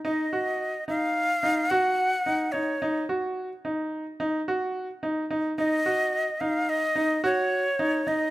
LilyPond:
<<
  \new Staff \with { instrumentName = "Flute" } { \time 5/4 \key dis \minor \tempo 4 = 108 dis''4. eis''4. fis''4. cis''8~ | cis''8 r1 r8 | dis''4. eis''8 dis''4 cis''4. dis''8 | }
  \new Staff \with { instrumentName = "Grand piano" } { \time 5/4 \key dis \minor dis'8 fis'4 dis'4 dis'8 fis'4 dis'8 dis'8 | dis'8 fis'4 dis'4 dis'8 fis'4 dis'8 dis'8 | dis'8 fis'4 dis'4 dis'8 fis'4 dis'8 dis'8 | }
>>